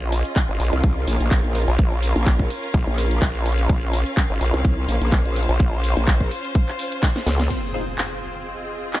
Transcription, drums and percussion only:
0.12 open hi-hat, ride
0.25 closed hi-hat
0.36 kick, clap, closed hi-hat
0.60 open hi-hat, ride
0.73 closed hi-hat
0.84 kick, closed hi-hat
1.07 open hi-hat, ride
1.20 closed hi-hat
1.31 kick, clap, closed hi-hat
1.44 closed hi-hat
1.55 open hi-hat, ride
1.62 closed hi-hat
1.68 closed hi-hat
1.79 kick, closed hi-hat
2.03 open hi-hat, ride
2.16 closed hi-hat
2.26 kick, clap, closed hi-hat
2.39 kick
2.50 open hi-hat, ride
2.63 closed hi-hat
2.74 kick, closed hi-hat
2.98 open hi-hat, ride
3.11 closed hi-hat
3.22 kick, clap, closed hi-hat
3.35 closed hi-hat
3.46 open hi-hat, ride
3.52 closed hi-hat
3.59 closed hi-hat
3.69 kick, closed hi-hat
3.93 open hi-hat, ride
4.06 closed hi-hat
4.17 kick, clap, closed hi-hat
4.41 open hi-hat, ride
4.54 closed hi-hat
4.65 kick, closed hi-hat
4.89 open hi-hat, ride
5.02 closed hi-hat
5.12 kick, clap, closed hi-hat
5.25 closed hi-hat
5.36 open hi-hat, ride
5.43 closed hi-hat
5.49 closed hi-hat
5.60 kick, closed hi-hat
5.84 open hi-hat, ride
5.97 closed hi-hat
6.07 kick, clap, closed hi-hat
6.21 kick
6.31 open hi-hat, ride
6.44 closed hi-hat
6.55 kick, closed hi-hat
6.68 clap
6.79 open hi-hat, ride
6.92 closed hi-hat
7.03 kick, snare, clap, closed hi-hat
7.16 snare, closed hi-hat
7.27 snare, open hi-hat, ride
7.33 closed hi-hat
7.40 snare, closed hi-hat
7.50 crash
7.98 clap
8.93 clap

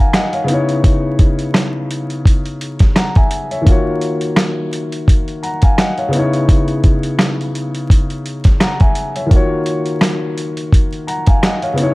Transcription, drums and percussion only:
0.13 cross-stick, snare, closed hi-hat
0.33 closed hi-hat
0.48 closed hi-hat
0.69 closed hi-hat
0.84 kick, closed hi-hat
1.19 kick, closed hi-hat
1.39 closed hi-hat
1.54 cross-stick, snare, closed hi-hat
1.91 closed hi-hat
2.10 closed hi-hat
2.25 kick, closed hi-hat
2.46 closed hi-hat
2.61 closed hi-hat
2.79 kick, snare, closed hi-hat
2.96 cross-stick, snare, closed hi-hat
3.15 kick, closed hi-hat
3.31 closed hi-hat
3.51 closed hi-hat
3.66 kick, closed hi-hat
4.01 closed hi-hat
4.21 closed hi-hat
4.36 cross-stick, snare, closed hi-hat
4.73 closed hi-hat
4.92 closed hi-hat
5.08 kick, closed hi-hat
5.28 closed hi-hat
5.43 closed hi-hat
5.62 kick, closed hi-hat
5.78 cross-stick, snare, closed hi-hat
5.98 closed hi-hat
6.13 closed hi-hat
6.33 closed hi-hat
6.49 kick, closed hi-hat
6.68 closed hi-hat
6.84 kick, closed hi-hat
7.03 closed hi-hat
7.19 cross-stick, snare, closed hi-hat
7.41 closed hi-hat
7.55 closed hi-hat
7.75 closed hi-hat
7.90 kick, closed hi-hat
8.10 closed hi-hat
8.26 closed hi-hat
8.44 kick, snare, closed hi-hat
8.60 cross-stick, snare, closed hi-hat
8.80 kick, closed hi-hat
8.95 closed hi-hat
9.16 closed hi-hat
9.31 kick, closed hi-hat
9.66 closed hi-hat
9.86 closed hi-hat
10.01 cross-stick, snare, closed hi-hat
10.38 closed hi-hat
10.57 closed hi-hat
10.73 kick, closed hi-hat
10.93 closed hi-hat
11.08 closed hi-hat
11.27 kick, closed hi-hat
11.43 cross-stick, snare, closed hi-hat
11.62 closed hi-hat
11.78 closed hi-hat

